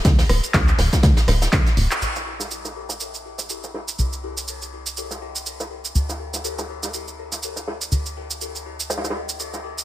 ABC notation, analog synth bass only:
X:1
M:4/4
L:1/8
Q:"Swing 16ths" 1/4=122
K:Bblyd
V:1 name="Analog synth bass" clef=bass
D,, D,,, D,, D,,, D,, D,,, D,, D,,, | B,,,8 | C,,8 | D,,8 |
D,,8 |]